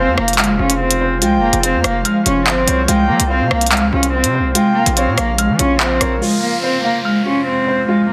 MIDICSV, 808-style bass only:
0, 0, Header, 1, 2, 480
1, 0, Start_track
1, 0, Key_signature, -4, "minor"
1, 0, Tempo, 416667
1, 1402, Time_signature, 4, 2, 24, 8
1, 9365, End_track
2, 0, Start_track
2, 0, Title_t, "808-style bass"
2, 0, Program_c, 0, 38
2, 82, Note_on_c, 0, 41, 98
2, 196, Note_off_c, 0, 41, 0
2, 202, Note_on_c, 0, 29, 109
2, 442, Note_on_c, 0, 31, 103
2, 459, Note_off_c, 0, 29, 0
2, 561, Note_on_c, 0, 29, 96
2, 578, Note_off_c, 0, 31, 0
2, 676, Note_off_c, 0, 29, 0
2, 682, Note_on_c, 0, 29, 107
2, 1401, Note_on_c, 0, 36, 99
2, 1419, Note_off_c, 0, 29, 0
2, 1583, Note_on_c, 0, 29, 98
2, 1600, Note_off_c, 0, 36, 0
2, 1753, Note_off_c, 0, 29, 0
2, 1762, Note_on_c, 0, 29, 109
2, 2003, Note_on_c, 0, 41, 96
2, 2020, Note_off_c, 0, 29, 0
2, 2114, Note_off_c, 0, 41, 0
2, 2121, Note_on_c, 0, 29, 110
2, 2352, Note_off_c, 0, 29, 0
2, 2602, Note_on_c, 0, 29, 105
2, 2841, Note_on_c, 0, 31, 99
2, 2858, Note_off_c, 0, 29, 0
2, 3070, Note_off_c, 0, 31, 0
2, 3081, Note_on_c, 0, 36, 106
2, 3312, Note_off_c, 0, 36, 0
2, 3321, Note_on_c, 0, 36, 109
2, 3563, Note_on_c, 0, 55, 101
2, 3580, Note_off_c, 0, 36, 0
2, 3677, Note_off_c, 0, 55, 0
2, 3681, Note_on_c, 0, 36, 112
2, 3922, Note_on_c, 0, 48, 99
2, 3940, Note_off_c, 0, 36, 0
2, 4036, Note_off_c, 0, 48, 0
2, 4042, Note_on_c, 0, 36, 113
2, 4401, Note_on_c, 0, 37, 95
2, 4419, Note_off_c, 0, 36, 0
2, 4516, Note_off_c, 0, 37, 0
2, 4522, Note_on_c, 0, 36, 108
2, 4883, Note_on_c, 0, 48, 103
2, 4900, Note_off_c, 0, 36, 0
2, 5062, Note_on_c, 0, 36, 103
2, 5079, Note_off_c, 0, 48, 0
2, 5233, Note_off_c, 0, 36, 0
2, 5603, Note_on_c, 0, 34, 113
2, 5842, Note_on_c, 0, 46, 101
2, 5860, Note_off_c, 0, 34, 0
2, 5956, Note_off_c, 0, 46, 0
2, 5962, Note_on_c, 0, 34, 107
2, 6323, Note_on_c, 0, 53, 100
2, 6340, Note_off_c, 0, 34, 0
2, 6436, Note_off_c, 0, 53, 0
2, 6442, Note_on_c, 0, 34, 107
2, 6903, Note_off_c, 0, 34, 0
2, 6922, Note_on_c, 0, 34, 103
2, 7152, Note_off_c, 0, 34, 0
2, 9365, End_track
0, 0, End_of_file